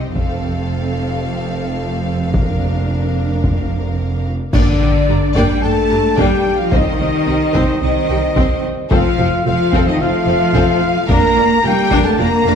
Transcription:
Already playing: double bass section C2, cello section C3, french horn section G3 D#4, viola section C4, violin section G4 D#5
0.14 double bass section F1, cello section F2, french horn section A3 C4, violin section A4 F5, taiko
2.34 french horn section A#3 D4, viola section D4, violin section A#4, taiko
3.44 taiko
4.53 double bass section G2, cello section D3, trombone section G3 D4, viola section A#3 D4, french horn section D4, flute section D5, violin section D5, trumpet section D5, concert bass drum, taiko, crash
4.81 double bass section G2, viola section D4, violin section G5
5.08 double bass section G2, viola section D4 G4, violin section A#5
5.35 double bass section G2, cello section G3, viola section A#3 D4, french horn section G4, violin section D5 G5, trumpet section G5, flute section G5, taiko
5.62 double bass section G2, cello section A3, viola section D4, french horn section A4, violin section G5 A5, trumpet section A5, flute section A5
5.90 double bass section G2, viola section D4 G4, violin section A#5
6.16 double bass section G2, cello section G3, viola section A#3 D4, french horn section G4, violin section D5 G5, trumpet section G5, flute section G5, taiko
6.57 cello section F3, french horn section F4, violin section F5, flute section F5, trumpet section F5
6.72 double bass section C2, cello section D#3, viola section C4, trombone section C4, french horn section D#4, violin section C5 D#5, trumpet section D#5, taiko
6.99 double bass section C2, viola section C4 D#4, violin section D#5
7.27 double bass section C2, viola section C4 G4, violin section G5
7.54 double bass section C2, viola section C4, violin section C5, taiko
7.81 double bass section C2, cello section D#3, viola section C4 D#4, french horn section D#4, flute section D#5, trumpet section D#5, violin section D#5
8.09 double bass section C2, viola section C4 G4, violin section G5
8.36 double bass section C2, viola section C4, violin section C5, taiko
8.91 double bass section F1, cello section F3, trombone section F3 A3, viola section C4, french horn section F4, violin section A4 F5, trumpet section F5, flute section F5, taiko
9.18 double bass section F1, viola section C4 F4, violin section C5
9.45 double bass section F1, cello section F3, viola section C4 A4, french horn section F4, flute section F5, trumpet section F5, violin section F5
9.73 double bass section F1, viola section C4, violin section A4, taiko
9.87 cello section D#3, french horn section D#4, trumpet section D#5, violin section D#5, flute section D#5
10.00 double bass section F1, cello section F3, viola section C4 F4, french horn section F4, violin section C5 F5, trumpet section F5, flute section F5
10.27 double bass section F1, viola section C4 A4, violin section F5
10.54 double bass section F1, viola section C4, violin section A4, taiko
11.09 double bass section F1, trombone section D3 A#3, cello section A#3, viola section D4, french horn section A#4, violin section A#4 A#5, trumpet section A#5, flute section A#5, taiko
11.37 double bass section F1, viola section D4 F4, violin section D5
11.63 double bass section F1, cello section G3, viola section D4 A#4, french horn section G4, violin section F5 G5, flute section G5, trumpet section G5
11.91 double bass section F1, viola section D4, violin section A#4, taiko
12.05 cello section A3, french horn section A4, trumpet section A5, violin section A5, flute section A5
12.18 double bass section F1, cello section A#3, viola section D4 F4, french horn section A#4, violin section D5 A#5, flute section A#5, trumpet section A#5
12.45 double bass section F1, viola section D4 A#4, violin section F5

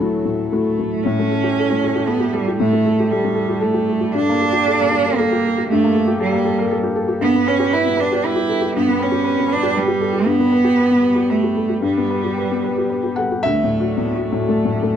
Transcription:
Already playing: felt piano D2, cello F#3, analog synth pad F#3 E4 A4
0.00 felt piano A3 E4 F#4
0.25 felt piano A2
0.49 cello A3, felt piano A3 E4 F#4
0.79 felt piano A3
1.03 felt piano A2, analog synth pad G3 E4 A4, cello C#4
1.19 felt piano A3
1.31 felt piano A4
1.44 felt piano G4
1.59 felt piano A4
1.70 felt piano A3
1.84 felt piano A4
1.95 felt piano G4
2.07 cello B3, felt piano A4
2.20 felt piano G4
2.33 cello G3, felt piano A4
2.48 felt piano G4
2.57 felt piano A2, cello A3
2.73 felt piano A3
2.86 felt piano A4
3.00 felt piano G4
3.11 cello G3, felt piano A4
3.24 felt piano A3
3.35 felt piano A4
3.49 felt piano G4
3.61 cello A3, felt piano A4
3.74 felt piano G4
3.89 felt piano A4
4.01 felt piano G4
4.14 felt piano G2, cello D4, analog synth pad G4
4.29 felt piano A#3
4.41 felt piano A4
4.53 felt piano G4
4.68 felt piano A4
4.80 felt piano A#3
4.92 felt piano A4
5.06 felt piano A#4
5.18 cello A#3, felt piano A4
5.32 felt piano G4
5.45 felt piano A4
5.58 felt piano G4
5.69 felt piano G2, cello A3
5.84 felt piano A#3
5.95 felt piano A4
6.07 felt piano G4
6.20 cello G3, felt piano A4
6.32 felt piano A#3
6.45 felt piano A4
6.58 felt piano A#4
6.71 felt piano A4
6.83 felt piano G4
6.96 felt piano A4
7.08 felt piano G4
7.18 felt piano G2, analog synth pad G3 G4 B4, cello B3
7.34 felt piano B3
7.46 cello C#4, felt piano B4
7.59 felt piano G4
7.73 cello E4, felt piano B4
7.85 felt piano B3
7.97 cello D4, felt piano B4
8.12 felt piano G4
8.24 cello E4, felt piano B4
8.36 felt piano G4
8.49 felt piano A4
8.62 felt piano G4
8.76 felt piano G2, cello B3
8.89 felt piano B3
9.00 cello C#4, felt piano B4
9.12 felt piano G4
9.24 felt piano B4
9.38 felt piano B3
9.48 felt piano B4
9.53 cello D4
9.63 felt piano G4
9.75 cello G3, felt piano B4
9.88 felt piano G4
10.01 felt piano A4
10.13 felt piano G4
10.26 felt piano G2, cello B3
10.39 felt piano B3
10.52 felt piano B4
10.64 felt piano G4
10.77 felt piano B4
10.91 felt piano B3
11.02 felt piano B4
11.15 felt piano G4
11.30 cello A3, felt piano B4
11.44 felt piano G4
11.56 felt piano A4
11.69 felt piano G4
11.82 felt piano G2, cello G3, analog synth pad G3 G4 B4
11.97 felt piano B3
12.10 felt piano B4
12.24 felt piano G4
12.38 felt piano B4
12.51 felt piano B3
12.64 felt piano B4
12.78 felt piano G4
12.90 felt piano B4
13.03 felt piano G4
13.16 felt piano A4 F#5
13.32 felt piano G4
13.43 felt piano D2 E5, analog synth pad F#3 A4 D5, cello A3
13.63 felt piano A2
13.80 felt piano F#4
13.97 felt piano A2, cello B3
14.15 felt piano F#4
14.24 cello A3
14.32 felt piano A2
14.49 felt piano A3
14.65 felt piano A2
14.83 felt piano A3

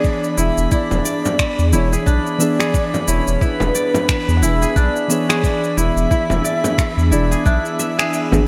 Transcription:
Already playing: synth keys E3 B3 D4 G#4, analog synth pad E3 B3 D4 G#4, kora D4 E4 G#4 E5, soft synth lead D5, synth texture B5
0.04 kick, shaker
0.24 shaker
0.37 analog synth bass E1, kora E4, soft synth lead E5, shaker
0.58 analog synth bass E1, shaker
0.72 kora E4, soft synth lead D5, kick, shaker
0.91 analog synth bass E1, frame drum, shaker
1.05 kora D5, shaker
1.25 frame drum, shaker
1.39 finger snap, kick, shaker
1.59 analog synth bass E2, shaker
1.72 analog synth bass E1, synth keys E3 B3 D4 G#4, kora E4, soft synth lead C#5, shaker
1.93 kora G#4, shaker
2.06 analog synth bass B1, kora D4, soft synth lead D5, kick, shaker
2.27 shaker
2.38 synth keys E3 B3 D4 G#4, kora E5, shaker
2.59 kora G#4, finger snap, shaker
2.74 kick, shaker
2.94 frame drum, shaker
3.08 analog synth bass E1, kora E4, soft synth lead C#5, shaker
3.28 analog synth bass E1, shaker
3.41 kora E4, soft synth lead B4, kick, shaker
3.60 analog synth bass E1, frame drum, shaker
3.75 kora D5, shaker
3.94 frame drum, shaker
4.09 finger snap, kick, shaker
4.28 analog synth bass E2, shaker
4.37 soft synth lead F#5
4.41 analog synth bass E1, synth keys E3 B3 D4 G#4, kora E4, soft synth lead E5, shaker
4.62 kora G#4, shaker
4.76 analog synth bass B1, kora D4, soft synth lead D5, kick, shaker
4.96 shaker
5.08 synth keys E3 B3 D4 G#4, soft synth lead C#5, kora E5, shaker
5.29 kora G#4, finger snap, shaker
5.44 soft synth lead D5, kick, shaker
5.64 shaker
5.77 analog synth bass E1, kora E4, soft synth lead E5, shaker
5.97 analog synth bass E1, shaker
6.11 kora E4, kick, shaker
6.30 analog synth bass E1, frame drum, shaker
6.44 kora D5, shaker
6.64 frame drum, shaker
6.78 finger snap, kick, shaker
6.97 analog synth bass E2, shaker
7.11 analog synth bass E1, synth keys E3 B3 D4 G#4, kora E4, soft synth lead D5, shaker
7.31 kora G#4, shaker
7.46 analog synth bass B1, kora D4, soft synth lead E5, kick, shaker
7.65 shaker
7.79 kora E5, shaker
7.99 kora G#4, finger snap, shaker
8.14 shaker
8.31 analog synth bass G#1, synth keys E3 B3 D4 G#4, frame drum, shaker

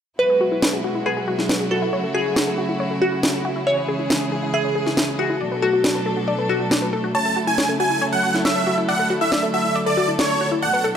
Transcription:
0.19 string section B2 F#3 G#3 E4 F#4, synth pluck B4, synth arpeggio sound B4
0.30 synth arpeggio sound G#4
0.41 synth arpeggio sound F#4
0.52 synth arpeggio sound E4
0.62 synth arpeggio sound B4, snare
0.73 synth arpeggio sound G#4
0.84 synth arpeggio sound F#4
0.95 synth arpeggio sound E4
1.06 synth pluck G#4, synth arpeggio sound B4
1.17 synth arpeggio sound G#4
1.28 synth arpeggio sound F#4
1.39 synth arpeggio sound E4, snare
1.49 synth arpeggio sound B4, snare
1.60 synth arpeggio sound G#4
1.71 synth arpeggio sound F#4, synth pluck A4
1.82 synth arpeggio sound E4
1.93 string section C#3 A3, synth arpeggio sound C#5
2.04 synth arpeggio sound A4
2.15 synth arpeggio sound F#4, synth pluck G#4
2.25 synth arpeggio sound E4
2.36 synth arpeggio sound C#5, snare
2.47 synth arpeggio sound A4
2.58 synth arpeggio sound F#4
2.69 synth arpeggio sound E4
2.80 synth arpeggio sound C#5
2.91 synth arpeggio sound A4
3.02 synth arpeggio sound F#4, synth pluck F#4
3.12 synth arpeggio sound E4
3.23 synth arpeggio sound C#5, snare
3.34 synth arpeggio sound A4
3.45 synth arpeggio sound F#4
3.56 synth arpeggio sound E4
3.67 string section E3 G#3 G#4, synth pluck C#5, synth arpeggio sound E5
3.78 synth arpeggio sound C#5
3.88 synth arpeggio sound G#4
3.99 synth arpeggio sound E4
4.10 synth arpeggio sound E5, snare
4.21 synth arpeggio sound C#5
4.32 synth arpeggio sound G#4
4.43 synth arpeggio sound E4
4.54 synth pluck G#4, synth arpeggio sound E5
4.65 synth arpeggio sound C#5
4.75 synth arpeggio sound G#4
4.86 synth arpeggio sound E4, snare
4.97 synth arpeggio sound E5, snare
5.08 synth arpeggio sound C#5
5.19 synth pluck F#4, synth arpeggio sound G#4
5.30 synth arpeggio sound E4
5.41 string section B2 F#3 A3 D4 A4, synth arpeggio sound D5
5.52 synth arpeggio sound B4
5.62 synth pluck F#4, synth arpeggio sound A4
5.73 synth arpeggio sound F#4
5.84 synth arpeggio sound D5, snare
5.95 synth arpeggio sound B4
6.06 synth arpeggio sound A4
6.17 synth arpeggio sound F#4
6.28 synth arpeggio sound D5
6.39 synth arpeggio sound B4
6.49 synth pluck F#4, synth arpeggio sound A4
6.60 synth arpeggio sound F#4
6.71 synth arpeggio sound D5, snare
6.82 synth arpeggio sound B4
6.93 synth arpeggio sound A4
7.04 synth arpeggio sound F#4
7.15 string section C#3 F#3 E4 A4, synth arpeggio sound C#5, supersaw synth A5
7.25 synth arpeggio sound A4
7.36 synth arpeggio sound F#4
7.47 synth arpeggio sound E4, supersaw synth G#5
7.58 synth arpeggio sound C#5, snare
7.69 synth arpeggio sound A4
7.80 synth arpeggio sound F#4, supersaw synth G#5
7.91 synth arpeggio sound E4
8.02 synth arpeggio sound C#5
8.12 synth arpeggio sound A4, supersaw synth F#5
8.23 synth arpeggio sound F#4
8.34 synth arpeggio sound E4, snare
8.45 synth arpeggio sound C#5, supersaw synth E5, snare
8.56 synth arpeggio sound A4
8.67 synth arpeggio sound F#4
8.78 synth arpeggio sound E4
8.88 string section D3, synth arpeggio sound D5, supersaw synth F#5
8.99 synth arpeggio sound A4
9.10 synth arpeggio sound F#4
9.21 synth arpeggio sound E4, supersaw synth E5
9.32 synth arpeggio sound D5, snare
9.43 synth arpeggio sound A4
9.54 synth arpeggio sound F#4, supersaw synth E5
9.65 synth arpeggio sound E4
9.75 synth arpeggio sound D5
9.86 synth arpeggio sound A4, supersaw synth D5
9.97 synth arpeggio sound F#4
10.08 synth arpeggio sound E4
10.19 supersaw synth C#5, synth arpeggio sound D5, snare
10.30 synth arpeggio sound A4
10.41 synth arpeggio sound F#4
10.52 synth arpeggio sound E4
10.62 string section B2 F#3 D4, synth arpeggio sound D5, supersaw synth F#5
10.73 synth arpeggio sound B4
10.84 synth arpeggio sound A4

